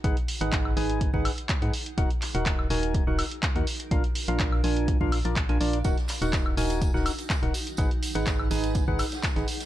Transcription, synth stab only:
X:1
M:4/4
L:1/16
Q:1/4=124
K:Ebm
V:1 name="Synth stab"
[EAcg] z2 [EAcg]3 [EAca]3 [EAcg] z3 [EAcg] z2 | [EGBg] z2 [EGBg]3 [EGBa]3 [EGBg] z3 [EGBg] z2 | [=DFBf] z2 [DFBf]3 [DFBa]3 [DFBf] z [DFB=d] z [DFBa] [DFBd] z | [EGBg] z2 [EGBg]3 [EGBa]3 [EGBg] z3 [EGBg] z2 |
[EAcg] z2 [EAcg]3 [EAca]3 [EAcg] z3 [EAcg] z2 |]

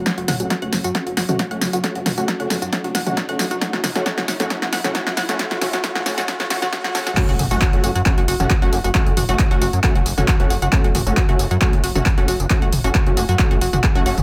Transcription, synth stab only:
X:1
M:4/4
L:1/16
Q:1/4=135
K:F#m
V:1 name="Synth stab"
[A,CF]2 z [A,CF]2 [A,CF]2 z [A,CF]2 z [A,CF]2 [A,CF]2 z | [A,CF]2 z [A,CF]2 [A,CF]2 z [A,CF]2 z [A,CF]2 [A,CF]2 z | [A,CF]2 z [A,CF] [A,CF]2 z [A,CF] [A,CF]2 z [A,CF] [A,CF]2 z [A,CF] | [A,F]2 [A,CF]2 [A,CF]2 [A,CF]2 [A,CF]2 [A,CF]2 [A,CF]2 [A,CF]2 |
[A,CF]2 z [A,CF]2 [A,CF]2 z [A,CF]2 z [A,CF] z [A,CF] z2 | [A,CF]2 z [A,CF]2 [A,CF]2 z [A,CF]2 z [A,CF] z [A,CF] z2 | [A,CF]2 z [A,CF]2 [A,CF]2 z [A,CF]2 z [A,CF] z [A,CF] z2 | [A,CF]2 z [A,CF]2 [A,CF]2 z [A,CF]2 z3 [A,CF] [A,CF] z |]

